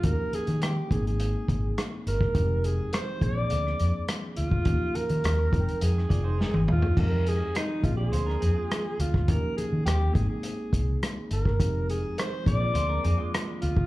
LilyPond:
<<
  \new Staff \with { instrumentName = "Alto saxophone" } { \time 4/4 \key f \dorian \tempo 4 = 104 bes'8 aes'8 g'8 aes'16 aes'4~ aes'16 r8 bes'8~ | bes'8 aes'8 c''8 d''4. r8 f'8~ | f'8 bes'4. aes'4. f'8 | bes'8 aes'8 ees'8 f'16 aes'4.~ aes'16 f'8 |
bes'8 aes'8 g'8 aes'16 aes'4~ aes'16 r8 bes'8~ | bes'8 aes'8 c''8 d''4. r8 f'8 | }
  \new Staff \with { instrumentName = "Clean electric guitar" } { \time 4/4 \key f \dorian r1 | r1 | r2 r8 <f' d''>16 <ees' c''>16 <d' bes'>16 <c' aes'>8. | r4. r16 <f' d''>16 c''16 <d' bes'>16 <c' aes'>16 <aes f'>4~ <aes f'>16 |
r1 | r4. r16 <f' d''>16 c''16 <d' bes'>16 <c' aes'>16 <aes f'>4~ <aes f'>16 | }
  \new Staff \with { instrumentName = "Tine electric piano" } { \time 4/4 \key f \dorian <f bes des' ees' ges' g'>4. <aes bes c' ees' aes'>2~ <aes bes c' ees' aes'>8 | <f aes c' ees' g'>4. <f bes c' d' aes'>2~ <f bes c' d' aes'>8 | <f bes des' ees' g'>4. <f aes c' ees' f' g''>2~ <f aes c' ees' f' g''>8 | <f g aes c' ees' g'>4. <f bes c' d' aes'>2~ <f bes c' d' aes'>8 |
<f bes des' ees' g'>4. <aes bes c' ees' aes'>2~ <aes bes c' ees' aes'>8 | <f aes c' ees' g'>4. <f bes c' d' aes'>2~ <f bes c' d' aes'>8 | }
  \new Staff \with { instrumentName = "Fingered electric bass" } { \clef bass \time 4/4 \key f \dorian ees,16 r8 ees8. aes,,4 aes,,8 r8 g,,8 | f,,4 r8 bes,,8 d,8 f,16 r8. d,8 | ees,16 r8 ees16 ees,8 f,,16 r16 f,8 f,,8. g,,16 ees,8 | f,4 r8 bes,,8 d,8 f,16 r8. d,8 |
ees,16 r8 ees16 ees,8 aes,,16 r8. c,8 r8 g,,8 | f,,4 r8 bes,,8 d,8 f,16 r8. d,8 | }
  \new DrumStaff \with { instrumentName = "Drums" } \drummode { \time 4/4 <hh bd>8 hh16 hh16 <hh ss>8 <hh bd>16 hh16 hh8 <hh bd>8 <hh ss>8 hh16 <bd ss>16 | <hh bd>8 hh8 <hh ss>8 <hh bd>8 hh16 ss16 hh8 <hh ss>8 hh16 bd16 | <hh bd>8 hh16 hh16 <hh ss>8 <hh bd>16 hh16 hh16 ss16 <hh bd>8 sn16 tommh16 toml16 tomfh16 | <cymc bd>8 hh8 <hh ss>8 <hh bd>8 hh16 ss16 hh8 <hh ss>8 hh16 <bd ss>16 |
<hh bd>8 hh8 <hh ss>8 <hh bd>8 hh8 <hh bd>8 <hh ss>8 hh16 <bd ss>16 | <hh bd>8 hh8 <hh ss>8 <hh bd>8 hh8 hh8 <hh ss>8 hh16 bd16 | }
>>